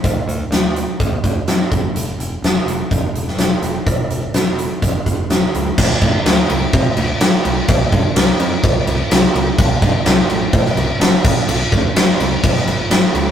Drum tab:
CC |----------------|----------------|----------------|x-x-x-x-x-x-x-x-|
HH |x-x-x-x-x-x-x-x-|x-x-x-x-x-x-x-x-|x-x-x-x-x-x-x-x-|----------------|
SD |----o-------o---|----o------oo---|----o-------o---|----o-------o---|
BD |o-------o-o---o-|--------o-------|o-------o-o-----|o-o-----o-------|

CC |x-x-x-x-x-x-x-x-|x-x-x-x-x-x-x-x-|x-x-x-x-x-x-x-x-|
HH |----------------|----------------|----------------|
SD |----o-------o---|----o----o--o---|----o----o--o---|
BD |o-o-----o-------|o-o-----o-----o-|--o-----o-------|